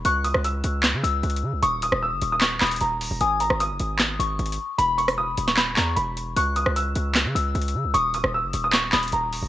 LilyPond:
<<
  \new Staff \with { instrumentName = "Synth bell" } { \time 4/4 \key cis \dorian \tempo 4 = 152 fis'''4 r4. e'''4. | dis'''2~ dis'''8 dis'''8 r4 | dis'''4 r4. cis'''4. | b''2~ b''8 cis'''8 r4 |
fis'''4 r4. e'''4. | dis'''2~ dis'''8 dis'''8 r4 | }
  \new Staff \with { instrumentName = "Grand piano" } { \time 4/4 \key cis \dorian cis'''8 dis'''8 e'''2. | cis'''8 dis'''8 e'''8. dis'''16 cis'''8 b''8 ais''4 | gis''8 ais''8 dis'''2. | b''8 cis'''8 dis'''8. cis'''16 b''8 ais''8 b''8 r8 |
cis'''8 dis'''8 e'''2. | cis'''8 dis'''8 e'''8. dis'''16 cis'''8 b''8 ais''4 | }
  \new Staff \with { instrumentName = "808-style bass" } { \clef bass \time 4/4 \key cis \dorian cis,8. cis,8. cis,8. cis16 cis,8 cis,8 cis16 cis,16 | dis,,8. dis,,8 fis,,16 dis,,4 dis,,8 dis,,8. dis,,16 | gis,,8. gis,,8 fis,,16 gis,,4 gis,,8 gis,,8 r8 | e,,4. dis,,4 e,8 e,,4 |
cis,8. cis,8. cis,8. cis16 cis,8 cis,8 cis16 cis,16 | dis,,8. dis,,8 fis,,16 dis,,4 dis,,8 dis,,8. dis,,16 | }
  \new DrumStaff \with { instrumentName = "Drums" } \drummode { \time 4/4 hh8 hh16 ss16 hh8 hh8 <hc hh sn>8 hh8 \tuplet 3/2 { hh16 hh16 hh16 r16 r16 r16 } | hh8 hh16 ss16 r8 hh8 <hc hh sn>8 <hc hh sn>32 hh32 hh32 hh32 hh8 hho8 | hh8 hh16 ss16 hh8 hh8 <hc hh sn>8 hh8 \tuplet 3/2 { hh16 hh16 hh16 r16 r16 r16 } | hh8 hh16 <hh ss>16 r8 hh16 sn16 <hc hh sn>8 <hc hh sn>8 hh8 hh8 |
hh8 hh16 ss16 hh8 hh8 <hc hh sn>8 hh8 \tuplet 3/2 { hh16 hh16 hh16 r16 r16 r16 } | hh8 hh16 ss16 r8 hh8 <hc hh sn>8 <hc hh sn>32 hh32 hh32 hh32 hh8 hho8 | }
>>